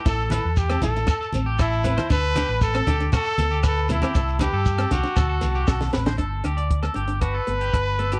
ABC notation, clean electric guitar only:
X:1
M:4/4
L:1/16
Q:1/4=117
K:G
V:1 name="Clean electric guitar"
A2 B z2 A z2 A A2 G A2 B c | A2 G B2 A G2 F A2 G B2 A G | A2 B A2 A G2 A A2 G A2 B c | A2 G d2 A G2 F A2 G B2 A G |]